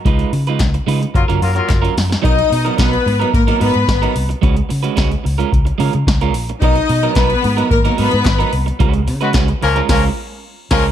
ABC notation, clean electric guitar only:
X:1
M:4/4
L:1/16
Q:1/4=110
K:C#mix
V:1 name="Clean electric guitar"
[G,DEB]2 z [G,DEB] z2 [G,DEB] z2 [F,CEA] z3 [F,CEA] z2 | [F,B,DA] z2 [F,B,DA] [F,B,DA] z2 [F,B,DA] z [F,B,DA] [F,B,DA] z2 [F,B,DA] z2 | [G,CFB] z2 [G,CFB] [G,CFB] z2 [G,CEA] z2 [G,CEA] z2 [G,CEA] z2 | [F,B,DA] z2 [F,B,DA] [F,B,DA] z2 [F,B,DA] z [F,B,DA] [F,B,DA] z2 [F,B,DA] z2 |
[G,CFB] z2 [G,CFB] [G,CFB] z2 [G,CEA] [G,CEA]2 z4 [G,CEA]2 |]